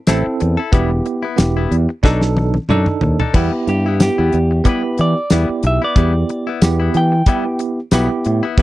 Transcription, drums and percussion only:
0.07 snare medium
0.07 closed hi-hat medium
0.07 tambourine loud
0.40 closed hi-hat medium
0.73 kick medium
0.73 closed hi-hat medium
1.06 closed hi-hat medium
1.38 snare loud
1.38 closed hi-hat medium
1.38 tambourine loud
1.72 closed hi-hat medium
2.04 kick medium
2.04 snare medium
2.21 snare medium
2.37 high tom medium
2.54 high tom medium
2.69 mid tom medium
2.86 mid tom medium
3.01 floor tom medium
3.20 floor tom medium
3.34 kick medium
3.34 crash medium
3.67 closed hi-hat medium
4.00 snare loud
4.00 closed hi-hat medium
4.00 tambourine loud
4.33 closed hi-hat medium
4.65 kick medium
4.65 closed hi-hat medium
4.98 closed hi-hat medium
5.30 snare medium
5.30 closed hi-hat medium
5.30 tambourine loud
5.63 closed hi-hat medium
5.96 kick loud
5.96 closed hi-hat medium
6.29 closed hi-hat medium
6.62 snare loud
6.62 closed hi-hat medium
6.62 tambourine loud
6.94 closed hi-hat medium
7.26 kick medium
7.26 closed hi-hat medium
7.59 closed hi-hat medium
7.91 snare medium
7.91 closed hi-hat medium
7.91 tambourine loud
8.25 closed hi-hat medium
8.58 kick loud
8.58 closed hi-hat medium

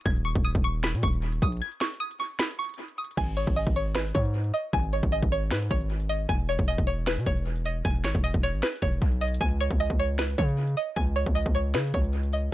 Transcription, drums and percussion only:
0.01 closed hi-hat medium
0.06 kick loud
0.06 closed hi-hat medium
0.16 closed hi-hat medium
0.25 closed hi-hat medium
0.35 kick loud
0.35 closed hi-hat medium
0.45 closed hi-hat medium
0.55 kick loud
0.55 closed hi-hat medium
0.64 closed hi-hat medium
0.83 finger snap loud
0.83 snare loud
0.83 closed hi-hat medium
0.94 closed hi-hat medium
1.03 kick loud
1.03 closed hi-hat medium
1.13 closed hi-hat medium
1.22 closed hi-hat medium
1.32 closed hi-hat medium
1.42 kick medium
1.42 closed hi-hat medium
1.47 closed hi-hat medium
1.52 closed hi-hat medium
1.57 closed hi-hat medium
1.62 closed hi-hat medium
1.72 closed hi-hat medium
1.81 finger snap medium
1.81 snare loud
1.81 closed hi-hat medium
1.91 closed hi-hat medium
2.00 closed hi-hat medium
2.11 closed hi-hat medium
2.20 open hi-hat medium
2.39 finger snap medium
2.39 snare loud
2.39 closed hi-hat medium
2.50 closed hi-hat medium
2.59 closed hi-hat soft
2.64 closed hi-hat medium
2.69 closed hi-hat medium
2.74 closed hi-hat medium
2.78 closed hi-hat medium
2.88 closed hi-hat medium
2.98 closed hi-hat medium
3.04 closed hi-hat medium
3.11 closed hi-hat medium
3.17 kick loud
3.17 closed hi-hat medium
3.17 crash loud
3.24 closed hi-hat medium
3.28 closed hi-hat medium
3.30 closed hi-hat medium
3.37 closed hi-hat medium
3.47 kick loud
3.47 closed hi-hat medium
3.56 closed hi-hat medium
3.67 kick loud
3.67 closed hi-hat medium
3.76 closed hi-hat medium
3.95 finger snap medium
3.95 snare loud
3.95 closed hi-hat medium
4.05 closed hi-hat medium
4.14 kick loud
4.14 closed hi-hat medium
4.25 closed hi-hat medium
4.34 closed hi-hat medium
4.44 closed hi-hat medium
4.54 closed hi-hat medium
4.73 kick loud
4.73 closed hi-hat medium
4.83 closed hi-hat medium
4.93 closed hi-hat medium
5.03 kick loud
5.03 closed hi-hat medium
5.12 closed hi-hat medium
5.23 kick loud
5.23 closed hi-hat medium
5.32 closed hi-hat medium
5.51 finger snap medium
5.51 snare loud
5.51 closed hi-hat medium
5.61 closed hi-hat medium
5.70 kick loud
5.70 closed hi-hat medium
5.81 closed hi-hat medium
5.90 closed hi-hat medium
6.00 closed hi-hat medium
6.09 closed hi-hat medium
6.29 kick loud
6.29 closed hi-hat medium
6.39 closed hi-hat medium
6.49 closed hi-hat medium
6.59 kick loud
6.59 closed hi-hat medium
6.68 closed hi-hat medium
6.78 kick loud
6.78 closed hi-hat medium
6.87 closed hi-hat medium
7.07 finger snap loud
7.07 snare loud
7.07 closed hi-hat medium
7.17 closed hi-hat medium
7.26 kick loud
7.26 closed hi-hat medium
7.37 closed hi-hat medium
7.46 closed hi-hat medium
7.56 closed hi-hat medium
7.65 closed hi-hat medium
7.85 kick loud
7.85 closed hi-hat medium
7.95 closed hi-hat medium
8.04 finger snap medium
8.04 snare medium
8.04 closed hi-hat medium
8.14 kick loud
8.14 closed hi-hat medium
8.24 closed hi-hat medium
8.34 kick medium
8.34 closed hi-hat medium
8.43 open hi-hat medium
8.62 finger snap medium
8.62 snare loud
8.62 closed hi-hat medium
8.73 closed hi-hat medium
8.82 kick loud
8.82 closed hi-hat medium
8.93 closed hi-hat medium
9.01 kick medium
9.01 closed hi-hat medium
9.12 closed hi-hat medium
9.21 closed hi-hat medium
9.28 closed hi-hat medium
9.34 closed hi-hat medium
9.41 kick loud
9.41 closed hi-hat medium
9.51 closed hi-hat medium
9.60 closed hi-hat medium
9.70 kick loud
9.70 closed hi-hat medium
9.80 closed hi-hat medium
9.90 kick loud
9.90 closed hi-hat medium
9.99 closed hi-hat medium
10.18 finger snap medium
10.18 snare loud
10.18 closed hi-hat medium
10.29 closed hi-hat medium
10.38 kick loud
10.38 closed hi-hat medium
10.48 closed hi-hat medium
10.57 closed hi-hat medium
10.67 closed hi-hat medium
10.77 closed hi-hat medium
10.97 kick loud
10.97 closed hi-hat medium
11.07 closed hi-hat medium
11.16 closed hi-hat medium
11.26 kick loud
11.26 closed hi-hat medium
11.36 closed hi-hat medium
11.46 kick loud
11.46 closed hi-hat medium
11.55 closed hi-hat medium
11.74 finger snap medium
11.74 snare loud
11.74 closed hi-hat medium
11.85 closed hi-hat medium
11.94 kick loud
11.94 closed hi-hat medium
12.04 closed hi-hat medium
12.13 closed hi-hat medium
12.23 closed hi-hat medium
12.33 closed hi-hat medium

